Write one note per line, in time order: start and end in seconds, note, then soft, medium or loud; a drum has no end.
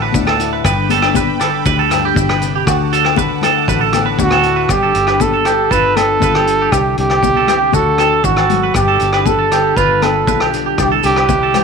0.00 0.10 A1 medium
0.00 0.65 A2 medium
0.00 1.39 D3 medium
0.00 0.62 A3 medium
0.00 0.15 D4 medium
0.00 0.39 F#4 medium
0.00 0.26 B4 medium
0.00 0.63 F#5 medium
0.00 0.63 A5 medium
0.00 0.60 D6 medium
0.12 0.61 D2 medium
0.12 0.91 D4 medium
0.12 kick medium
0.12 high conga medium
0.12 maracas medium
0.27 0.51 A4 medium
0.27 cross-stick medium
0.27 low agogo medium
0.40 0.65 E4 medium
0.40 closed hi-hat medium
0.40 maracas medium
0.53 0.64 B4 medium
0.64 1.62 G1 medium
0.64 1.90 G2 medium
0.64 0.89 B4 medium
0.64 2.65 G5 medium
0.64 2.65 B5 medium
0.64 4.66 D6 medium
0.64 kick medium
0.64 cross-stick medium
0.64 muted conga soft
0.64 low agogo medium
0.64 maracas medium
0.89 1.03 B3 medium
0.89 1.14 A4 medium
0.89 closed hi-hat medium
0.89 high conga medium
0.89 maracas medium
1.02 2.67 D4 soft
1.02 cross-stick medium
1.02 low agogo medium
1.14 1.40 B4 medium
1.14 kick medium
1.14 high conga medium
1.14 maracas medium
1.40 2.65 D3 medium
1.40 1.65 A4 medium
1.40 cross-stick medium
1.40 closed hi-hat soft
1.40 low agogo medium
1.40 maracas medium
1.66 2.12 D2 medium
1.66 2.64 G4 medium
1.66 1.78 B4 medium
1.66 kick medium
1.66 maracas medium
1.79 2.03 A4 medium
1.90 2.64 G2 medium
1.90 cross-stick medium
1.90 closed hi-hat medium
1.90 muted conga soft
1.90 low agogo medium
1.90 maracas medium
2.05 2.29 G4 medium
2.15 2.63 G1 medium
2.15 2.40 B2 medium
2.15 kick medium
2.15 high conga medium
2.15 maracas loud
2.29 2.53 B4 medium
2.29 cross-stick medium
2.29 low agogo medium
2.40 2.66 C3 medium
2.40 closed hi-hat medium
2.40 maracas medium
2.55 2.67 G4 medium
2.66 3.64 D2 medium
2.66 5.45 D3 medium
2.66 2.91 F#4 medium
2.66 4.68 F#5 medium
2.66 4.68 A5 medium
2.66 kick medium
2.66 cross-stick medium
2.66 muted conga soft
2.66 low agogo medium
2.66 maracas loud
2.93 3.67 F#4 medium
2.93 3.17 A4 medium
2.93 closed hi-hat medium
2.93 maracas medium
3.05 cross-stick medium
3.05 low agogo medium
3.16 3.42 B4 medium
3.16 kick medium
3.16 high conga medium
3.16 maracas medium
3.42 4.67 A3 medium
3.42 3.67 A4 medium
3.42 cross-stick medium
3.42 closed hi-hat soft
3.42 muted conga soft
3.42 low conga medium
3.42 low agogo medium
3.42 maracas medium
3.68 4.15 A1 medium
3.68 4.44 F#4 medium
3.68 3.81 B4 medium
3.68 kick medium
3.68 muted conga soft
3.68 maracas medium
3.81 4.05 A4 medium
3.93 4.70 A2 medium
3.93 cross-stick medium
3.93 closed hi-hat medium
3.93 muted conga soft
3.93 high conga medium
3.93 low agogo medium
3.93 maracas medium
4.06 4.30 B4 medium
4.19 4.65 D2 medium
4.19 4.67 D4 medium
4.19 4.73 F#4 medium
4.19 kick medium
4.19 high conga medium
4.19 maracas loud
4.31 4.56 A4 medium
4.31 cross-stick medium
4.31 low agogo medium
4.43 4.70 E4 medium
4.43 closed hi-hat soft
4.56 4.68 B4 medium
4.69 4.93 G1 medium
4.69 5.68 G2 medium
4.69 5.68 B3 soft
4.69 4.95 D4 medium
4.69 5.23 G4 medium
4.69 kick medium
4.69 cross-stick medium
4.69 muted conga soft
4.69 low agogo medium
4.69 maracas loud
4.83 5.06 A4 medium
4.95 5.67 G1 medium
4.95 closed hi-hat medium
4.95 maracas medium
5.07 5.32 B4 medium
5.07 cross-stick medium
5.07 low agogo medium
5.20 5.69 G4 medium
5.20 5.73 A4 medium
5.20 kick medium
5.20 muted conga soft
5.20 high conga medium
5.20 maracas medium
5.34 5.45 A4 medium
5.45 6.46 D3 medium
5.45 5.70 G4 medium
5.45 cross-stick medium
5.45 closed hi-hat soft
5.45 low agogo medium
5.45 maracas medium
5.71 6.18 G1 medium
5.71 6.69 G2 medium
5.71 6.69 B3 medium
5.71 5.96 D4 medium
5.71 6.21 F4 medium
5.71 5.95 A4 medium
5.71 5.98 B4 medium
5.71 kick medium
5.71 muted conga soft
5.71 maracas medium
5.96 6.74 D4 medium
5.96 6.74 A4 loud
5.96 6.20 B4 medium
5.96 cross-stick medium
5.96 closed hi-hat medium
5.96 muted conga soft
5.96 high conga medium
5.96 low agogo medium
5.96 maracas medium
6.20 6.68 G1 loud
6.20 6.70 F4 medium
6.20 6.34 B4 medium
6.20 kick medium
6.20 high conga medium
6.20 maracas loud
6.35 6.59 G4 medium
6.35 cross-stick medium
6.35 low agogo medium
6.47 7.72 D3 medium
6.47 closed hi-hat soft
6.47 maracas medium
6.62 6.85 G4 medium
6.72 6.95 C2 medium
6.72 7.22 C3 medium
6.72 7.75 G3 medium
6.72 6.98 D4 medium
6.72 7.74 E4 medium
6.72 6.97 G4 medium
6.72 kick medium
6.72 cross-stick medium
6.72 muted conga soft
6.72 low agogo medium
6.72 maracas loud
6.97 7.70 C2 medium
6.97 7.73 D4 medium
6.97 7.75 G4 loud
6.97 closed hi-hat medium
7.10 cross-stick medium
7.10 low agogo medium
7.23 7.47 B2 medium
7.23 kick medium
7.23 muted conga soft
7.23 high conga medium
7.23 maracas medium
7.37 7.48 A4 medium
7.47 7.73 C3 medium
7.47 7.72 G4 medium
7.47 cross-stick medium
7.47 closed hi-hat soft
7.47 low conga medium
7.47 low agogo medium
7.47 maracas medium
7.72 8.26 D2 medium
7.72 8.24 D3 medium
7.72 8.76 D4 medium
7.72 7.97 F#4 medium
7.72 7.98 F#4 medium
7.72 8.26 A4 medium
7.72 kick medium
7.72 muted conga soft
7.72 high conga medium
7.72 maracas medium
7.98 8.72 F#4 medium
7.98 8.23 A4 medium
7.98 cross-stick medium
7.98 closed hi-hat soft
7.98 low agogo medium
7.98 maracas medium
8.24 8.71 G#1 loud
8.24 8.49 E3 medium
8.24 8.36 F#4 medium
8.24 8.74 F#4 medium
8.24 kick medium
8.24 maracas medium
8.36 8.61 A4 medium
8.36 cross-stick medium
8.36 low agogo medium
8.50 8.75 F#3 medium
8.50 closed hi-hat soft
8.50 high conga medium
8.50 low conga medium
8.50 maracas medium
8.63 8.75 B4 medium
8.74 8.98 G1 medium
8.74 9.74 G2 medium
8.74 9.74 B3 medium
8.74 9.00 D4 medium
8.74 9.27 G4 medium
8.74 kick medium
8.74 cross-stick medium
8.74 muted conga soft
8.74 low agogo medium
8.74 maracas medium
8.88 9.12 A4 medium
9.00 9.73 G1 medium
9.00 9.77 D4 medium
9.00 closed hi-hat soft
9.00 maracas medium
9.13 9.38 B4 medium
9.13 cross-stick medium
9.13 low agogo medium
9.26 9.74 G4 medium
9.26 9.78 A4 medium
9.26 kick medium
9.26 muted conga soft
9.26 high conga medium
9.26 maracas medium
9.39 9.51 A4 medium
9.50 10.52 D3 medium
9.50 9.76 G4 medium
9.50 cross-stick medium
9.50 closed hi-hat soft
9.50 low agogo medium
9.50 maracas medium
9.77 10.28 G1 medium
9.77 10.75 G2 medium
9.77 10.76 B3 medium
9.77 10.03 D4 medium
9.77 10.01 F4 medium
9.77 10.28 F4 medium
9.77 10.04 B4 medium
9.77 kick medium
9.77 muted conga soft
9.77 maracas medium
10.02 10.81 D4 medium
10.02 10.51 A4 medium
10.02 10.27 B4 medium
10.02 cross-stick medium
10.02 closed hi-hat soft
10.02 muted conga soft
10.02 high conga medium
10.02 low agogo medium
10.27 10.74 B1 loud
10.27 10.76 F4 medium
10.27 10.40 B4 medium
10.27 kick medium
10.27 high conga medium
10.27 maracas medium
10.40 10.65 G4 medium
10.40 cross-stick medium
10.40 low agogo medium
10.54 11.55 D3 medium
10.54 closed hi-hat soft
10.54 maracas medium
10.66 10.90 G4 medium
10.78 11.02 C2 medium
10.78 11.55 C3 medium
10.78 11.64 G3 medium
10.78 11.05 D4 medium
10.78 11.29 E4 medium
10.78 10.91 G4 medium
10.78 kick medium
10.78 cross-stick medium
10.78 muted conga soft
10.78 low agogo medium
10.78 maracas medium
10.92 11.15 A4 medium
11.03 11.64 C2 medium
11.03 11.64 D4 medium
11.03 11.64 G4 medium
11.03 closed hi-hat soft
11.03 maracas medium
11.16 11.41 B4 medium
11.16 cross-stick medium
11.16 low agogo medium
11.29 11.64 E4 medium
11.29 kick medium
11.29 muted conga soft
11.29 high conga medium
11.29 maracas medium
11.43 11.54 A4 medium
11.54 11.64 E3 soft
11.54 11.64 G4 medium
11.54 cross-stick medium
11.54 closed hi-hat soft
11.54 low conga medium
11.54 low agogo medium
11.54 maracas medium